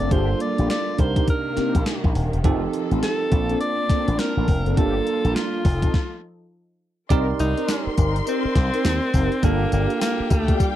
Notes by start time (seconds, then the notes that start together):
Already playing: C4 D4 F4 A4 D5
0.00 F#1 C4 D4 A4, closed hi-hat
0.11 G1 G3 A#3 D4 F4 G4 G#4 C5, kick, closed hi-hat
0.18 A4
0.40 D5, closed hi-hat
0.58 A#1 A#3 D4 F4 G4, closed hi-hat
0.70 D5, snare, closed hi-hat
0.98 C2 C3 D#3 A#3 D4 D#4 G4 A#4 C5, kick, closed hi-hat
1.16 A#3 C4 D#4 G4, kick, closed hi-hat
1.28 A#4, kick, closed hi-hat
1.57 A#3 C4 D#4 G4, muted slap bass stroke, snare, closed hi-hat
1.75 A#1, kick, closed hi-hat
1.86 snare, closed hi-hat
2.04 A#1, kick
2.15 D#1, open hi-hat
2.33 E1, closed hi-hat
2.44 F1 F3 A3 C4 D#4 F4 G4 A4, kick, closed hi-hat
2.73 closed hi-hat
2.91 A1 A3 C4 D#4 F4, closed hi-hat
3.03 A4, snare, closed hi-hat
3.31 A#1 A#3 C4 D4 F4 A5, kick, closed hi-hat
3.50 A#3 C4 D4 A4, closed hi-hat
3.61 D5, closed hi-hat
3.90 A#3 C4 D4 A4, muted slap bass stroke, kick, snare, closed hi-hat
4.08 A1, closed hi-hat
4.19 A#4, snare, closed hi-hat
4.37 A1 A#3 C4 D4 A4
4.48 F1, kick, open hi-hat
4.66 F#1 A#3 C4 D4 A4, closed hi-hat
4.73 A#3 A#4
4.77 G1 G3 A#3 D4 F4 G4 A4, kick, closed hi-hat
5.07 closed hi-hat
5.24 A#1 A#3 D4 F4 G4, closed hi-hat
5.36 F4, snare, closed hi-hat
5.64 F1 F3 D#4 A4, kick, open hi-hat
5.82 C4 D#4 F4 A4, kick, closed hi-hat
5.94 kick, snare
7.09 C2 C4 D#4 G4 A#4 D5 C6, kick, closed hi-hat, tambourine
7.39 C2 D#4, closed hi-hat, tambourine
7.57 C4 D#4 G4 A#4, closed hi-hat
7.68 snare, closed hi-hat, tambourine
7.87 muted slap bass stroke
7.97 G1 C4 D#4 G4 A#4, kick, closed hi-hat, tambourine
8.16 closed hi-hat
8.27 C4 D#4 G4 A#4, closed hi-hat, tambourine
8.45 muted slap bass stroke
8.56 C2, kick, snare, closed hi-hat
8.74 C4 D#4 G4 A#4, closed hi-hat
8.85 D#2, snare, closed hi-hat, tambourine
9.14 F#1 C4 D#4 G4 A#4, kick, open hi-hat, tambourine
9.32 closed hi-hat
9.42 G1 A#3 D4 F4 G4 A4 F5 G5, kick, closed hi-hat, tambourine
9.72 G1 A#3 D4 F4 G4, closed hi-hat, tambourine
9.90 closed hi-hat
10.01 A#3, snare, closed hi-hat, tambourine
10.20 muted slap bass stroke
10.30 D2 A3, kick, closed hi-hat, tambourine
10.48 A#3 D4 F4 G4, kick, closed hi-hat
10.60 G3, kick, closed hi-hat, tambourine